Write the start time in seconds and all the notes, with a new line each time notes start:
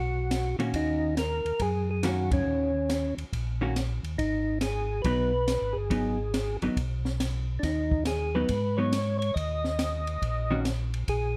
Already playing: B1 F#4
0.31 snare, hi-hat pedal, ride
0.58 A#2 D#3 A#3 C#4 F#4, ride
0.74 D#2 D#4, kick, ride
1.17 A#4, snare, hi-hat pedal, ride
1.45 D#2, ride
1.60 F#2 G#4, kick, ride
1.91 G#4
2.03 D#3 A#3 C#4 F#4, snare, hi-hat pedal, ride
2.31 C#4, kick, ride
2.46 D#2
2.89 snare, hi-hat pedal, ride
3.17 D#2, ride
3.32 A#1, kick, ride
3.61 D#3 A#3 C#4 F#4
3.76 snare, hi-hat pedal, ride
4.03 D#2, ride
4.18 G#1 D#4, kick, ride
4.61 G#4, snare, hi-hat pedal, ride
5.02 B1 F#3 B3 D#4 B4, kick, ride
5.48 snare, hi-hat pedal, ride
5.61 G#1
5.73 G1 G#4
5.90 G#1 F#3 B3 D#4, kick, ride
6.34 snare, hi-hat pedal, ride
6.62 G#1 F#3 B3 D#4, ride
6.76 B1, kick, ride
7.05 snare
7.20 snare, hi-hat pedal, ride
7.59 D#2 D4, snare, ride
7.63 D#4, kick
7.91 kick
8.05 G#4, snare, hi-hat pedal, ride
8.35 F#3 B3 D#4 B4
8.49 G#2, kick, ride
8.77 F#3 B3 D#4 C#5
8.92 snare, hi-hat pedal, ride
9.19 C#5, ride
9.34 D#2 D#5, kick, ride
9.64 snare
9.79 snare, hi-hat pedal, ride
10.07 ride
10.21 A#1, kick, ride
10.51 D#3 A#3 C#4 F#4
10.65 snare, hi-hat pedal, ride
10.94 ride
11.08 A#1 G#4, kick, ride